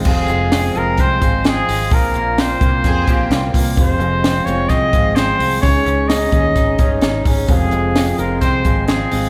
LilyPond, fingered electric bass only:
\new Staff \with { instrumentName = "Fingered electric bass" } { \clef bass \time 4/4 \key f \minor \tempo 4 = 129 f,,8 f,,4 f,,8 c,8 aes,,4 aes,,8 | bes,,8 bes,,4 c,8 f,8 bes,,8 c,8 c,8 | f,,8 f,,4 f,,8 c,8 aes,,4 c,8 | des,8 des,4 ees,8 aes,,8 g,,8 aes,,8 aes,,8 |
f,,8 f,,4 f,,8 c,8 aes,,4 aes,,8 | }